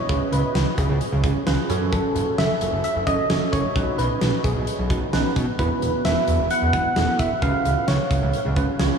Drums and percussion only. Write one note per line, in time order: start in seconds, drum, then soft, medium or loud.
0.09 kick loud
0.09 closed hi-hat medium
0.33 closed hi-hat medium
0.55 snare loud
0.55 closed hi-hat medium
0.78 kick medium
0.78 closed hi-hat medium
1.01 closed hi-hat medium
1.24 kick medium
1.24 closed hi-hat medium
1.47 snare loud
1.47 closed hi-hat medium
1.70 closed hi-hat medium
1.93 kick loud
1.93 closed hi-hat medium
2.16 closed hi-hat medium
2.38 snare loud
2.38 closed hi-hat medium
2.61 closed hi-hat medium
2.84 closed hi-hat medium
3.07 kick medium
3.07 closed hi-hat medium
3.30 snare loud
3.30 closed hi-hat medium
3.53 kick medium
3.53 closed hi-hat medium
3.76 kick loud
3.76 closed hi-hat medium
3.99 closed hi-hat medium
4.21 snare loud
4.21 closed hi-hat medium
4.44 kick medium
4.44 closed hi-hat medium
4.67 closed hi-hat medium
4.90 kick medium
4.90 closed hi-hat medium
5.13 snare loud
5.13 closed hi-hat medium
5.36 kick medium
5.36 closed hi-hat medium
5.59 kick loud
5.59 closed hi-hat medium
5.82 closed hi-hat medium
6.05 snare loud
6.05 closed hi-hat medium
6.28 closed hi-hat medium
6.51 closed hi-hat medium
6.73 kick medium
6.73 closed hi-hat medium
6.96 snare loud
6.96 closed hi-hat medium
7.19 kick medium
7.19 closed hi-hat medium
7.42 kick loud
7.42 closed hi-hat medium
7.65 closed hi-hat medium
7.88 snare loud
7.88 closed hi-hat medium
8.11 kick medium
8.11 closed hi-hat medium
8.33 closed hi-hat medium
8.56 kick medium
8.56 closed hi-hat medium
8.79 snare loud
8.79 closed hi-hat medium